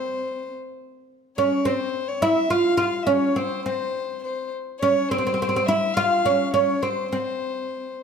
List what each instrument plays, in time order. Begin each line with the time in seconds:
Already playing: oud C4, violin C5
1.37 oud C#4, violin C#5
1.65 oud C4, violin C5
2.08 violin C#5
2.22 oud E4, violin E5
2.50 oud F4, violin F5
2.77 oud F4, violin F5
3.03 oud C#4, violin E5
3.10 violin C#5
3.36 oud C4, violin C5
3.66 oud C4, violin C5
4.24 violin C5
4.81 oud C#4, violin C#5
5.09 oud C4, violin C5
5.18 oud C4
5.27 oud C4
5.34 oud C4
5.42 oud C4
5.49 oud C4
5.56 oud C4
5.66 oud E4, violin E5
5.94 oud F4, violin F5
6.25 oud C#4
6.54 oud C#4, violin C#5
6.82 oud C4, violin C5
7.12 oud C4, violin C5